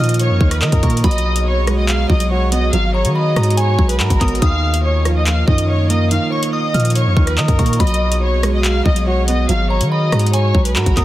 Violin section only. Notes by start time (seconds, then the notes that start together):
Already playing: D#5 D#6
0.20 C#5 C#6
0.51 B4 B5
0.62 A#4 A#5
1.04 D#5 D#6
1.46 C#5 C#6
1.78 D#5 D#6
1.88 F5 F6
2.10 D#5 D#6
2.31 C#5 C#6
2.52 D#5 D#6
2.73 F5 F6
2.94 C#5 C#6
3.16 D#5 D#6
3.58 C#5 C#6
3.89 B4 B5
4.00 A#4 A#5
4.42 F5 F6
4.84 C#5 C#6
5.16 D#5 D#6
5.26 F5 F6
5.48 D#5 D#6
5.69 C#5 C#6
5.90 D#5 D#6
6.11 F5 F6
6.32 C#5 C#6
6.53 D#5 D#6
6.96 C#5 C#6
7.27 B4 B5
7.38 A#4 A#5
7.80 D#5 D#6
8.22 C#5 C#6
8.54 D#5 D#6
8.64 F5 F6
8.85 D#5 D#6
9.07 C#5 C#6
9.28 D#5 D#6
9.49 F5 F6
9.70 C#5 C#6
9.91 D#5 D#6
10.33 C#5 C#6
10.65 B4 B5
10.76 A#4 A#5